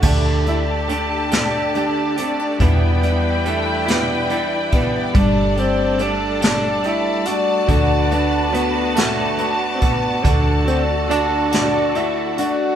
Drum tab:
CC |x-----|------|------|------|
HH |-xxxxx|xxxxxx|xxxxxx|xxxxxx|
SD |---o--|---o--|---o--|---o--|
BD |o-----|o----o|o-----|o----o|

CC |------|
HH |xxxxxx|
SD |---o--|
BD |o-----|